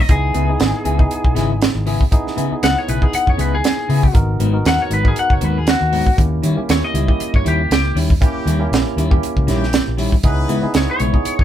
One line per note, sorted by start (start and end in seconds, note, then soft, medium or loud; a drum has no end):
0.00 0.10 D#5 medium
0.09 0.30 C#2 loud
0.09 0.42 B3 medium
0.09 0.42 D#4 medium
0.09 0.42 E4 medium
0.09 0.43 G#4 medium
0.09 1.58 G#4 medium
0.09 kick loud
0.09 closed hi-hat medium
0.34 0.55 C#2 medium
0.34 0.50 C#3 medium
0.34 0.51 B3 medium
0.34 0.51 E4 medium
0.34 0.51 G#4 medium
0.34 closed hi-hat medium
0.48 0.91 B3 medium
0.48 0.91 D#4 medium
0.48 0.91 E4 medium
0.48 0.91 G#4 medium
0.60 0.71 G#1 loud
0.60 snare loud
0.60 closed hi-hat medium
0.85 1.06 C#2 medium
0.85 1.01 C#3 medium
0.85 1.01 B3 medium
0.85 1.01 E4 medium
0.85 1.02 G#4 medium
0.85 closed hi-hat medium
0.98 1.84 B3 medium
0.98 1.84 D#4 medium
0.98 1.85 E4 medium
0.98 1.85 G#4 medium
0.98 kick medium
1.11 closed hi-hat medium
1.24 1.34 B1 medium
1.24 kick medium
1.35 1.68 G#1 loud
1.35 1.52 C#3 loud
1.35 1.52 B3 medium
1.35 1.52 E4 loud
1.35 1.52 G#4 medium
1.35 snare soft
1.35 closed hi-hat medium
1.62 snare loud
1.62 closed hi-hat medium
1.75 1.96 G#1 medium
1.86 2.02 C#3 medium
1.86 2.03 B3 medium
1.86 2.03 E4 loud
1.86 2.03 G#4 loud
1.86 open hi-hat medium
2.01 kick medium
2.11 2.45 B3 medium
2.11 2.45 D#4 medium
2.11 2.45 E4 medium
2.11 2.46 G#4 medium
2.11 kick loud
2.11 closed hi-hat loud
2.27 snare soft
2.36 2.53 C#3 medium
2.36 2.49 C#3 medium
2.36 2.54 B3 medium
2.36 2.54 E4 medium
2.36 2.54 G#4 medium
2.36 closed hi-hat medium
2.51 2.94 B3 medium
2.51 2.94 D#4 medium
2.51 2.94 E4 medium
2.51 2.94 G#4 medium
2.51 muted fingered electric bass stroke soft
2.63 2.74 C#2 medium
2.63 2.77 F#5 medium
2.63 snare loud
2.63 closed hi-hat medium
2.78 2.89 C#5 medium
2.88 3.00 B1 medium
2.88 3.04 C#3 medium
2.88 3.04 B3 medium
2.88 3.04 E4 medium
2.88 3.05 G#4 medium
2.88 3.03 B4 medium
2.88 closed hi-hat medium
3.01 3.87 B3 medium
3.01 3.87 D#4 medium
3.01 3.87 E4 medium
3.01 3.87 G#4 medium
3.01 3.14 G#4 medium
3.01 kick medium
3.13 3.28 F#5 medium
3.13 muted fingered electric bass stroke soft
3.13 closed hi-hat medium
3.27 3.37 F#2 medium
3.27 3.41 C#5 medium
3.27 kick medium
3.37 3.60 C#2 medium
3.37 3.54 C#3 medium
3.37 3.55 B3 medium
3.37 3.55 E4 medium
3.37 3.55 G#4 medium
3.37 3.53 B4 medium
3.37 closed hi-hat medium
3.55 3.65 G#4 medium
3.64 4.14 G#4 loud
3.64 snare loud
3.64 closed hi-hat medium
3.88 4.05 C#3 medium
3.88 4.10 C#3 medium
3.88 4.05 B3 medium
3.88 4.06 E4 medium
3.88 4.06 G#4 loud
3.88 open hi-hat medium
4.03 kick medium
4.13 4.36 G#1 loud
4.13 4.47 B3 medium
4.13 4.47 D#4 medium
4.13 4.47 F#4 medium
4.13 4.48 A#4 medium
4.13 kick loud
4.13 closed hi-hat medium
4.40 4.61 G#1 medium
4.40 4.56 G#2 medium
4.40 4.56 F#3 medium
4.40 4.56 B3 medium
4.40 4.57 D#4 medium
4.40 closed hi-hat medium
4.53 4.96 B3 medium
4.53 4.96 D#4 medium
4.53 4.96 F#4 medium
4.53 4.96 A#4 medium
4.65 4.77 D#2 loud
4.65 4.80 F#5 loud
4.65 snare loud
4.65 closed hi-hat medium
4.82 4.92 C#5 medium
4.90 5.12 G#1 medium
4.90 5.07 G#2 medium
4.90 5.07 F#3 medium
4.90 5.07 B3 medium
4.90 5.07 D#4 medium
4.90 5.06 B4 medium
4.90 closed hi-hat medium
5.03 5.89 B3 medium
5.03 5.90 D#4 medium
5.03 5.90 F#4 medium
5.03 5.90 A#4 medium
5.03 kick medium
5.08 5.18 G#4 medium
5.16 5.31 F#5 medium
5.16 closed hi-hat medium
5.30 5.40 F#1 medium
5.30 5.44 C#5 medium
5.30 kick medium
5.40 5.74 D#2 medium
5.40 5.57 G#2 medium
5.40 5.57 F#3 medium
5.40 5.58 B3 medium
5.40 5.58 D#4 medium
5.40 closed hi-hat medium
5.44 5.58 B4 medium
5.58 5.68 G#4 medium
5.67 6.17 F#4 loud
5.67 snare loud
5.67 closed hi-hat medium
5.81 6.02 D#2 medium
5.92 6.08 G#2 medium
5.92 6.08 F#3 medium
5.92 6.09 B3 medium
5.92 6.09 D#4 medium
5.92 open hi-hat medium
6.07 kick medium
6.17 6.39 D#2 loud
6.17 6.50 A#3 medium
6.17 6.51 C#4 medium
6.17 6.51 E4 medium
6.17 6.51 G4 medium
6.17 kick loud
6.17 closed hi-hat medium
6.42 6.59 D#3 medium
6.42 6.55 D#3 medium
6.42 6.59 G3 medium
6.42 6.60 C#4 loud
6.42 6.60 E4 loud
6.42 closed hi-hat medium
6.56 6.99 A#3 medium
6.56 6.99 C#4 medium
6.56 6.99 E4 medium
6.56 7.00 G4 medium
6.56 muted fingered electric bass stroke soft
6.69 6.80 D#2 medium
6.69 6.83 C#5 medium
6.69 snare loud
6.69 closed hi-hat medium
6.84 7.33 D#5 medium
6.94 7.05 C#2 medium
6.94 7.10 D#3 medium
6.94 7.10 G3 medium
6.94 7.10 C#4 medium
6.94 7.10 E4 medium
6.94 closed hi-hat medium
7.07 7.93 A#3 medium
7.07 7.93 C#4 medium
7.07 7.93 E4 medium
7.07 7.93 G4 medium
7.07 kick medium
7.20 muted fingered electric bass stroke soft
7.20 closed hi-hat medium
7.34 7.43 G2 medium
7.34 7.46 C#5 medium
7.34 kick medium
7.44 7.66 D#2 medium
7.44 7.61 D#3 medium
7.44 7.61 G3 medium
7.44 7.61 C#4 medium
7.44 7.61 E4 medium
7.44 7.71 G4 medium
7.44 closed hi-hat medium
7.70 7.93 C#2 medium
7.70 7.96 G4 loud
7.70 snare loud
7.70 closed hi-hat medium
7.95 8.18 D#2 medium
7.95 8.11 D#3 medium
7.95 8.12 G3 medium
7.95 8.12 C#4 medium
7.95 8.12 E4 medium
7.95 open hi-hat medium
8.10 kick medium
8.21 8.54 A#3 medium
8.21 8.71 C#4 medium
8.21 8.54 C#4 medium
8.21 8.71 E4 medium
8.21 8.54 E4 medium
8.21 8.72 G4 loud
8.21 8.54 G4 medium
8.21 kick loud
8.21 closed hi-hat medium
8.46 8.67 D#2 medium
8.46 8.62 D#3 medium
8.46 8.63 G3 medium
8.46 8.63 C#4 medium
8.46 8.63 E4 medium
8.46 closed hi-hat medium
8.59 9.02 A#3 medium
8.59 9.02 C#4 medium
8.59 9.02 E4 medium
8.59 9.03 G4 medium
8.71 8.83 A#1 loud
8.71 snare loud
8.71 closed hi-hat medium
8.96 9.17 D#2 medium
8.96 9.13 D#3 medium
8.96 9.13 G3 medium
8.96 9.14 C#4 medium
8.96 9.14 E4 medium
8.96 closed hi-hat medium
9.10 9.96 A#3 medium
9.10 9.96 C#4 medium
9.10 9.96 E4 medium
9.10 9.96 G4 medium
9.10 kick medium
9.23 closed hi-hat medium
9.37 9.46 C#2 medium
9.37 kick medium
9.47 9.80 A#1 loud
9.47 9.63 D#3 medium
9.47 9.64 G3 medium
9.47 9.64 C#4 medium
9.47 9.87 C#4 medium
9.47 9.64 E4 loud
9.47 9.87 E4 medium
9.47 9.88 G4 loud
9.47 snare soft
9.47 closed hi-hat medium
9.63 snare soft
9.73 snare loud
9.73 closed hi-hat medium
9.87 10.08 A#1 medium
9.97 10.14 D#3 medium
9.97 10.14 G3 loud
9.97 10.14 C#4 loud
9.97 10.15 E4 loud
9.97 open hi-hat medium
10.12 kick medium
10.23 10.44 C#2 loud
10.23 10.74 E3 medium
10.23 10.56 B3 medium
10.23 10.74 C#4 loud
10.23 10.57 D#4 medium
10.23 10.57 E4 medium
10.23 10.57 G#4 medium
10.23 10.75 B4 loud
10.23 kick loud
10.23 closed hi-hat medium
10.48 10.65 C#3 medium
10.48 10.60 C#3 medium
10.48 10.65 G#3 medium
10.48 10.65 B3 medium
10.48 10.65 E4 loud
10.48 closed hi-hat medium
10.62 11.04 B3 medium
10.62 11.05 D#4 medium
10.62 11.05 E4 medium
10.62 11.05 G#4 medium
10.62 muted fingered electric bass stroke soft
10.74 10.86 C#2 medium
10.74 10.89 C#5 medium
10.74 snare loud
10.74 closed hi-hat medium
10.91 11.39 C#5 loud
10.99 11.11 B1 medium
10.99 11.16 C#3 medium
10.99 11.16 G#3 medium
10.99 11.16 B3 medium
10.99 11.16 E4 medium
10.99 closed hi-hat medium
11.13 11.44 B3 medium
11.13 11.44 D#4 medium
11.13 11.44 E4 medium
11.13 11.44 G#4 medium
11.13 kick medium
11.25 muted fingered electric bass stroke soft
11.25 closed hi-hat medium
11.39 11.44 F#2 medium
11.39 11.44 C#5 medium
11.39 kick medium